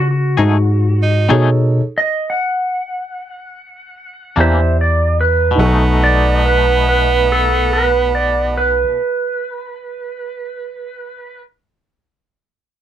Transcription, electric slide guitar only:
0.11 1.28 F#4 medium
1.98 2.27 D#5 medium
2.30 4.35 F#5 medium
4.40 4.76 C5 loud
4.40 4.76 E5 medium
4.81 5.17 D5 medium
5.21 5.58 B4 medium
6.04 6.42 D5 medium
6.46 6.85 B4 medium
6.89 7.27 B4 medium
7.32 7.70 A4 medium
7.73 8.12 B4 medium
8.15 8.54 D5 medium
8.57 11.42 B4 medium

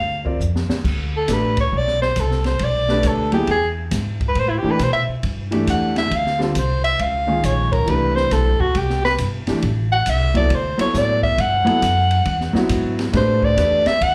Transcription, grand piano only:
0.25 0.38 C4 medium
0.25 0.39 F4 medium
0.25 0.39 A#4 medium
0.25 0.39 D5 medium
1.27 1.54 A3 medium
1.27 1.54 D4 medium
1.27 1.55 G4 medium
1.27 1.55 B4 medium
2.89 3.30 A3 medium
2.89 3.30 D4 medium
2.89 3.30 G4 medium
2.89 3.31 B4 medium
3.32 3.46 F#3 medium
3.32 3.47 B3 medium
3.32 3.47 E4 medium
3.32 3.47 G#4 medium
4.62 4.77 E3 medium
4.62 4.77 A3 medium
4.62 4.78 D4 medium
4.62 4.78 G4 medium
5.51 6.08 E3 medium
5.51 6.08 A3 medium
5.51 6.08 D4 medium
5.51 6.09 G4 medium
6.39 6.53 D3 medium
6.39 6.53 G3 medium
6.39 6.54 C4 medium
6.39 6.54 F4 medium
7.27 7.83 D#3 medium
7.27 7.84 G#3 medium
7.27 7.84 C#4 medium
7.27 7.84 F4 medium
7.86 8.53 E3 medium
7.86 8.54 A3 medium
7.86 8.54 D4 medium
7.86 8.55 G4 medium
9.48 9.61 E3 medium
9.48 9.61 A3 medium
9.48 9.62 D4 medium
9.48 9.62 G4 medium
10.34 10.48 F#3 medium
10.34 10.49 B3 medium
10.34 10.49 E4 medium
10.34 10.49 A4 medium
10.78 11.34 F#3 medium
10.78 11.35 B3 medium
10.78 11.35 E4 medium
10.78 11.36 A4 medium
11.65 11.79 F#3 medium
11.65 11.80 B3 medium
11.65 11.80 E4 medium
11.65 11.80 A4 medium
12.53 13.10 F#3 medium
12.53 13.10 B3 medium
12.53 13.11 E4 medium
12.53 13.11 F#4 medium
13.12 13.55 A3 medium
13.12 13.55 D4 medium
13.12 13.56 G4 medium
13.12 13.56 B4 medium
13.56 13.83 A3 medium
13.56 13.83 D4 medium
13.56 13.84 G4 medium
13.56 13.84 B4 medium

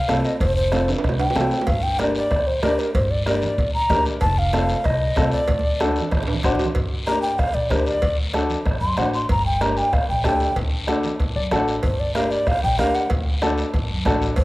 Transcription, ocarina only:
0.00 0.20 F5 loud
0.20 0.26 F5 medium
0.25 0.39 D#5 medium
0.40 0.55 C5 medium
0.56 0.90 C5 loud
1.19 1.68 G5 loud
1.67 1.84 F5 loud
1.83 2.01 G5 medium
1.99 2.15 D5 medium
2.16 2.49 D5 medium
2.47 2.63 C5 medium
2.64 2.81 D5 medium
2.79 2.93 A#4 medium
2.94 3.12 C5 medium
3.11 3.26 D5 medium
3.27 3.71 D5 medium
3.74 4.04 A#5 loud
4.21 4.40 A5 medium
4.39 4.87 F5 loud
4.85 5.32 D#5 loud
5.33 5.92 D5 medium
7.07 7.21 A#5 medium
7.22 7.40 G5 medium
7.38 7.56 F5 medium
7.54 7.72 D5 medium
7.70 7.88 C5 medium
7.86 8.17 D5 medium
8.81 8.99 C6 medium
8.97 9.13 F#5 medium
9.14 9.29 C6 medium
9.31 9.45 A#5 loud
9.46 9.63 G5 medium
9.62 9.79 A#5 medium
9.77 9.95 G5 medium
9.93 10.09 F5 medium
10.10 10.25 G5 medium
10.27 10.57 G5 medium
11.84 12.01 C5 loud
12.00 12.14 D5 medium
12.15 12.32 F5 medium
12.31 12.50 D5 medium
12.48 12.63 F5 loud
12.64 12.78 G5 medium
12.79 12.96 F5 medium
12.95 13.10 F#5 medium
14.37 14.44 C5 loud

